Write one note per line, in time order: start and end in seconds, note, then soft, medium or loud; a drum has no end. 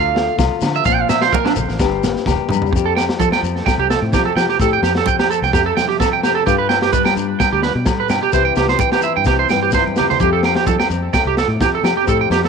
0.00 0.28 D2 loud
0.00 0.82 D3 medium
0.00 0.37 F4 medium
0.00 0.36 F5 medium
0.15 0.83 A3 medium
0.15 snare medium
0.38 0.48 C2 loud
0.38 0.85 F4 medium
0.38 kick medium
0.38 snare medium
0.38 high conga medium
0.38 low agogo medium
0.38 shekere medium
0.61 0.80 D3 medium
0.61 0.83 F3 medium
0.61 snare medium
0.61 low agogo medium
0.61 shekere loud
0.74 0.85 E5 loud
0.74 shekere soft
0.85 1.04 A#1 loud
0.85 1.31 A#2 medium
0.85 1.77 F3 medium
0.85 1.08 C4 medium
0.85 1.80 F4 medium
0.85 0.95 F5 medium
0.85 muted nylon-string guitar stroke medium
0.85 kick medium
0.85 snare soft
0.85 shekere medium
0.95 1.01 G5 loud
1.01 1.09 F5 medium
1.09 1.77 C4 medium
1.09 1.21 E5 medium
1.09 snare medium
1.09 muted conga soft
1.09 low agogo medium
1.09 shekere loud
1.21 1.32 C5 medium
1.21 snare medium
1.21 shekere soft
1.32 1.56 A#2 medium
1.32 1.45 A#4 medium
1.32 kick medium
1.32 high conga loud
1.32 shekere medium
1.45 1.51 D4 medium
1.45 snare medium
1.45 low agogo medium
1.56 1.66 A#1 medium
1.56 1.79 A2 medium
1.56 muted conga soft
1.56 low conga medium
1.56 shekere loud
1.68 1.77 A1 medium
1.68 snare soft
1.68 shekere soft
1.79 2.15 G1 loud
1.79 2.70 G2 medium
1.79 2.25 G4 medium
1.79 kick medium
1.79 snare medium
1.79 muted conga soft
1.79 low agogo medium
1.79 shekere medium
2.04 2.71 A#3 medium
2.04 snare medium
2.04 high conga medium
2.04 shekere medium
2.16 snare soft
2.16 shekere soft
2.26 2.36 E1 loud
2.26 2.70 G4 medium
2.26 kick medium
2.26 snare medium
2.26 low conga medium
2.26 low agogo medium
2.26 shekere medium
2.49 2.68 G2 medium
2.49 2.71 G3 medium
2.49 mid tom medium
2.49 high conga medium
2.49 low agogo medium
2.53 shekere medium
2.62 floor tom medium
2.66 shekere soft
2.72 3.08 F2 medium
2.72 4.59 F2 medium
2.72 4.39 G4 medium
2.72 muted clean electric guitar stroke medium
2.72 kick medium
2.72 muted conga soft
2.76 shekere medium
2.86 2.93 A4 medium
2.96 3.05 G5 medium
2.96 snare medium
2.96 muted conga soft
2.96 low agogo medium
2.96 shekere medium
3.09 snare medium
3.20 3.29 F3 medium
3.20 4.64 F3 medium
3.20 3.28 A4 medium
3.20 kick medium
3.20 high conga medium
3.20 shekere medium
3.32 3.40 G5 medium
3.32 snare medium
3.32 low agogo medium
3.42 3.61 F2 medium
3.42 4.12 C4 medium
3.42 shekere medium
3.56 snare soft
3.66 4.57 A3 medium
3.66 3.74 G5 medium
3.66 kick medium
3.66 snare medium
3.66 muted conga soft
3.66 high conga medium
3.66 low agogo medium
3.66 shekere medium
3.78 3.96 C2 medium
3.78 3.87 G4 medium
3.90 4.58 C3 medium
3.90 3.98 A4 medium
3.90 snare medium
3.90 shekere medium
4.02 4.14 A2 medium
4.12 4.31 F3 loud
4.12 5.30 C4 medium
4.12 4.22 G4 medium
4.12 kick medium
4.12 snare medium
4.12 high conga medium
4.12 low agogo medium
4.12 shekere medium
4.26 4.33 A4 medium
4.36 4.46 F3 medium
4.36 4.61 G4 medium
4.36 4.45 G5 medium
4.36 snare medium
4.36 muted conga soft
4.36 low agogo medium
4.36 shekere medium
4.49 4.57 G4 medium
4.49 snare soft
4.59 6.45 F2 medium
4.59 4.78 A2 medium
4.59 6.25 G4 medium
4.59 4.69 A4 medium
4.59 kick medium
4.59 snare soft
4.59 shekere loud
4.73 4.80 G5 medium
4.82 5.01 F2 medium
4.82 4.92 G4 medium
4.82 snare medium
4.82 muted conga soft
4.82 low agogo medium
4.82 shekere medium
4.95 5.04 A4 medium
4.95 snare medium
5.06 6.44 F3 medium
5.06 5.15 G5 medium
5.06 kick medium
5.06 high conga medium
5.06 shekere loud
5.19 5.27 G4 medium
5.19 snare medium
5.19 low agogo medium
5.30 5.39 A4 medium
5.30 shekere medium
5.42 5.51 C2 medium
5.42 5.51 G5 medium
5.42 snare soft
5.53 5.71 F2 loud
5.53 6.45 A3 medium
5.53 5.62 G4 medium
5.53 kick medium
5.53 snare medium
5.53 low agogo medium
5.53 shekere medium
5.66 5.73 A4 medium
5.77 6.45 C3 medium
5.77 5.85 G5 medium
5.77 snare medium
5.77 high conga medium
5.77 shekere medium
5.89 5.96 G4 medium
5.89 snare soft
6.00 6.47 C4 medium
6.00 6.08 A4 medium
6.00 kick medium
6.00 snare medium
6.00 high conga medium
6.00 low agogo medium
6.00 shekere loud
6.13 6.20 G5 medium
6.23 6.32 G4 medium
6.23 6.46 G4 medium
6.23 snare medium
6.23 muted conga soft
6.23 low agogo medium
6.23 shekere medium
6.35 6.43 A4 medium
6.46 7.86 G2 medium
6.46 6.83 G2 medium
6.46 8.34 F4 medium
6.46 6.55 G4 medium
6.46 kick medium
6.46 snare soft
6.46 muted conga soft
6.46 shekere loud
6.58 6.66 B4 medium
6.69 6.78 G5 medium
6.69 snare medium
6.69 muted conga soft
6.69 low agogo medium
6.82 6.90 G4 medium
6.82 snare medium
6.92 8.32 G3 medium
6.92 7.03 G3 medium
6.92 7.01 B4 medium
6.92 kick medium
6.92 high conga medium
6.92 shekere loud
7.05 7.13 G5 medium
7.05 snare medium
7.05 low agogo medium
7.16 7.35 G2 medium
7.16 8.32 D4 medium
7.16 shekere medium
7.40 7.48 G5 medium
7.40 muted nylon-string guitar stroke medium
7.40 kick medium
7.40 snare medium
7.40 muted conga soft
7.40 high conga medium
7.40 low agogo medium
7.40 shekere medium
7.52 7.70 D2 medium
7.52 7.60 G4 medium
7.63 7.72 B4 medium
7.63 muted nylon-string guitar stroke medium
7.63 snare medium
7.75 7.87 B2 medium
7.86 8.10 A2 medium
7.86 8.04 G3 loud
7.86 muted clean electric guitar stroke medium
7.86 kick medium
7.86 snare medium
7.86 high conga medium
7.86 low agogo medium
7.86 shekere loud
8.00 8.07 B4 medium
8.08 8.19 G2 medium
8.08 8.31 B2 medium
8.08 8.19 G5 medium
8.08 snare medium
8.08 muted conga soft
8.08 low agogo medium
8.08 shekere medium
8.23 8.30 G4 medium
8.31 8.51 C2 medium
8.31 8.79 C3 medium
8.31 8.77 E3 medium
8.31 9.28 C4 medium
8.31 9.02 E4 medium
8.31 9.98 G4 medium
8.31 8.42 C5 medium
8.31 kick medium
8.31 snare soft
8.31 shekere loud
8.45 8.53 G5 medium
8.56 8.75 C2 medium
8.56 8.66 G4 medium
8.56 snare medium
8.56 muted conga soft
8.56 low agogo medium
8.56 shekere medium
8.68 8.77 C5 medium
8.68 snare medium
8.78 10.17 E3 medium
8.78 8.89 G5 medium
8.78 kick medium
8.78 high conga medium
8.78 shekere medium
8.92 9.00 G4 medium
8.92 snare medium
8.92 low agogo medium
9.02 9.74 E4 medium
9.02 9.12 E5 medium
9.02 shekere medium
9.17 9.25 G2 medium
9.17 9.24 G5 medium
9.24 9.45 C2 medium
9.24 10.22 C4 medium
9.24 9.35 G4 medium
9.24 kick medium
9.24 snare medium
9.24 muted conga soft
9.24 low agogo medium
9.24 shekere medium
9.39 9.47 C5 medium
9.49 10.18 G2 medium
9.49 9.59 G5 medium
9.49 snare medium
9.49 high conga medium
9.49 shekere medium
9.63 9.70 G4 medium
9.71 10.19 E4 medium
9.71 9.83 C5 medium
9.71 kick medium
9.71 snare medium
9.71 high conga medium
9.71 low agogo medium
9.71 shekere medium
9.88 high conga medium
9.96 10.06 G4 medium
9.96 10.23 G4 soft
9.96 snare medium
9.96 low conga medium
9.96 low agogo medium
9.96 shekere medium
10.10 10.17 C5 medium
10.10 snare soft
10.10 low conga medium
10.20 10.57 F2 medium
10.20 12.05 F2 medium
10.20 10.68 F3 medium
10.20 11.15 A3 medium
10.20 10.91 C4 medium
10.20 10.29 G4 medium
10.20 11.83 G4 medium
10.20 kick medium
10.20 shekere medium
10.33 10.40 A4 medium
10.43 10.53 G5 medium
10.43 snare medium
10.43 muted conga soft
10.43 low agogo medium
10.55 10.64 G4 medium
10.55 snare medium
10.66 10.76 F3 medium
10.66 10.75 A4 medium
10.66 muted nylon-string guitar stroke medium
10.66 kick medium
10.66 high conga medium
10.66 shekere medium
10.80 10.87 G5 medium
10.80 snare medium
10.80 low agogo medium
10.90 11.08 F2 medium
10.90 11.59 C4 medium
10.90 shekere medium
11.14 12.06 A3 medium
11.14 11.23 G5 medium
11.14 kick medium
11.14 snare medium
11.14 muted conga soft
11.14 high conga medium
11.14 low agogo medium
11.14 shekere medium
11.25 11.44 C2 medium
11.25 11.34 G4 medium
11.37 12.05 C3 medium
11.37 11.46 A4 medium
11.37 snare medium
11.37 shekere medium
11.48 11.62 A2 medium
11.60 11.79 F3 loud
11.60 12.48 C4 medium
11.60 11.70 G4 medium
11.60 kick medium
11.60 snare medium
11.60 high conga medium
11.60 low agogo medium
11.60 shekere medium
11.75 11.82 A4 medium
11.83 11.93 F3 medium
11.83 12.07 G4 medium
11.83 11.93 G5 medium
11.83 snare medium
11.83 muted conga soft
11.83 low agogo medium
11.83 shekere medium
11.97 12.04 G4 medium
12.06 12.48 F2 medium
12.06 12.26 A2 loud
12.06 12.48 G4 medium
12.06 12.17 A4 medium
12.06 kick medium
12.06 shekere medium
12.21 12.28 G5 medium
12.30 12.48 F2 medium
12.30 12.40 G4 medium
12.30 snare medium
12.30 muted conga soft
12.30 low agogo medium
12.30 shekere medium
12.44 12.48 A4 medium
12.44 snare medium